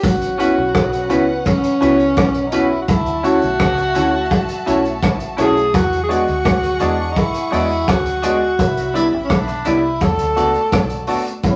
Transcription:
0.03 fingered electric bass A1, violin section C#4 B4 F#5, tenor saxophone F#4, kick, closed hi-hat
0.22 closed hi-hat
0.38 grand piano B3 C#4 E4 F#4, clean electric guitar C#4 F#4 B4, tenor saxophone F#4, closed hi-hat
0.58 fingered electric bass B1
0.75 fingered electric bass B1, kick, cross-stick, closed hi-hat
0.93 closed hi-hat
1.09 fingered electric bass C#2, grand piano B3 C#4 E4 F#4, tenor saxophone B3, clean electric guitar C#4 F#4 B4, closed hi-hat
1.46 tenor saxophone C#4, kick, closed hi-hat
1.64 closed hi-hat
1.81 fingered electric bass C#2, grand piano B3 C#4 E4 F#4, clean electric guitar C#4 F#4 B4, closed hi-hat
1.99 closed hi-hat
2.17 fingered electric bass B1, kick, cross-stick, closed hi-hat
2.34 closed hi-hat
2.47 tenor saxophone D#4
2.52 grand piano B3 C#4 E4 F#4, clean electric guitar C#4 F#4 B4, tenor saxophone E4, closed hi-hat
2.82 tenor saxophone F#4
2.88 fingered electric bass D2, tenor saxophone E4, violin section F#4 E5 A5, kick, closed hi-hat
3.06 closed hi-hat
3.23 grand piano A3 C#4 E4 F#4, clean electric guitar E4 F#4 C#5, tenor saxophone F#4, closed hi-hat
3.42 fingered electric bass B1, closed hi-hat
3.60 fingered electric bass C#2, kick, cross-stick, closed hi-hat
3.77 muted clean electric guitar stroke, closed hi-hat
3.95 fingered electric bass D2, grand piano A3 C#4 E4 F#4, clean electric guitar E4 F#4 C#5, closed hi-hat
4.31 kick, closed hi-hat
4.49 closed hi-hat
4.66 fingered electric bass B1, grand piano A3 C#4 E4 F#4, clean electric guitar E4 F#4 C#5, closed hi-hat
4.85 closed hi-hat
5.03 fingered electric bass A1, kick, cross-stick, closed hi-hat
5.20 closed hi-hat
5.37 fingered electric bass B1, grand piano A3 C#4 E4 F#4, clean electric guitar E4 F#4 C#5, tenor saxophone G#4, cross-stick, closed hi-hat
5.57 closed hi-hat
5.74 fingered electric bass E2, tenor saxophone F#4, violin section G#4 F#5 C#6, kick, closed hi-hat
5.93 closed hi-hat
6.04 tenor saxophone G#4
6.09 grand piano G#3 B3 D4 F#4, clean electric guitar F#4 G#4 D5, tenor saxophone F#4, closed hi-hat
6.28 fingered electric bass D2, closed hi-hat
6.45 fingered electric bass D2, kick, cross-stick, closed hi-hat
6.63 closed hi-hat
6.80 fingered electric bass E2, grand piano G#3 B3 D4 F#4, tenor saxophone D4, clean electric guitar F#4 G#4 D5, closed hi-hat
7.11 tenor saxophone D#4
7.16 tenor saxophone E4, kick, closed hi-hat
7.34 closed hi-hat
7.51 fingered electric bass E2, grand piano G#3 B3 D4 F#4, tenor saxophone E4, clean electric guitar F#4 G#4 D5, closed hi-hat
7.71 closed hi-hat
7.88 fingered electric bass D2, tenor saxophone F#4, kick, cross-stick, closed hi-hat
8.06 closed hi-hat
8.23 grand piano G#3 B3 D4 F#4, clean electric guitar F#4 G#4 D5, tenor saxophone F#4, closed hi-hat
8.59 fingered electric bass C2, violin section E4 E5 B5, kick, closed hi-hat
8.77 closed hi-hat
8.94 grand piano G3 B3 D4 E4, clean electric guitar E4 B4 D5, tenor saxophone E4, closed hi-hat
9.14 fingered electric bass A1
9.24 tenor saxophone C#4
9.30 fingered electric bass B1, tenor saxophone D4, kick, cross-stick, closed hi-hat
9.48 muted clean electric guitar stroke, closed hi-hat
9.65 fingered electric bass C2, grand piano G3 B3 D4 E4, clean electric guitar E4 B4 D5, tenor saxophone E4, closed hi-hat
10.01 fingered electric bass E2, violin section F#4 D5 A5, tenor saxophone A4, kick, closed hi-hat
10.19 fingered electric bass D2, closed hi-hat
10.36 fingered electric bass C#2, grand piano A3 B3 D4 F#4, clean electric guitar F#4 A4 D5, closed hi-hat
10.54 closed hi-hat
10.72 fingered electric bass B1, kick, cross-stick, closed hi-hat
10.90 closed hi-hat
11.07 grand piano A3 B3 D4 F#4, clean electric guitar F#4 A4 D5, open hi-hat
11.26 closed hi-hat
11.43 fingered electric bass A1, saxophone section B3 C#4 E4, kick, closed hi-hat

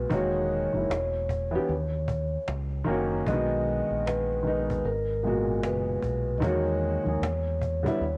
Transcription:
Already playing: upright piano A#2 B2 G#3 F#4, vibraphone B4
0.09 fingered electric bass E1, upright piano D#3 G#3 A#3, vibraphone C#5, cajon bass
0.14 upright piano F#4
0.34 cajon slap
0.50 cajon slap
0.73 fingered electric bass F#1, upright piano D#3 G#3 A#3 E4
0.90 fingered electric bass E1, cajon slap
1.15 cajon slap
1.29 cajon bass
1.51 upright piano E3 B3 D4
1.55 upright piano G4
1.69 fingered electric bass D#2, cajon slap
1.91 cajon slap
2.08 cajon bass
2.48 fingered electric bass C#2, cajon slap
2.69 cajon slap
2.84 fingered electric bass F#1, upright piano D#3 A#3 C#4, cajon slap
2.89 upright piano F#4
3.13 cajon slap
3.26 fingered electric bass B1, upright piano D3 G#3 B3, vibraphone D#5, cajon bass
3.30 upright piano D#3 F#4
3.51 cajon slap
3.67 cajon slap
3.91 fingered electric bass A#1
4.06 vibraphone B4, cajon slap
4.31 cajon slap
4.43 upright piano D#3 G#3 B3
4.47 upright piano D#4, cajon slap
4.70 cajon bass
4.85 fingered electric bass G#1, vibraphone A#4, cajon slap
5.08 cajon slap
5.22 upright piano A#2 B2 G#3, cajon slap
5.27 upright piano F#4
5.64 fingered electric bass F#1, vibraphone B4, cajon slap
5.85 cajon slap
6.03 fingered electric bass B1, cajon bass
6.28 cajon slap
6.38 upright piano D#3 G#3, vibraphone D#5
6.42 fingered electric bass E2, upright piano A#3 F#4, vibraphone C#5, cajon bass
6.66 cajon slap
6.83 cajon slap
7.04 fingered electric bass D#2, upright piano D#3 G#3 A#3, cajon slap
7.08 upright piano G#4
7.22 fingered electric bass E2, cajon slap
7.47 cajon slap
7.61 cajon bass
7.83 upright piano D3 G3 B3, cajon bass
7.87 upright piano E4
8.01 fingered electric bass D#2, cajon slap

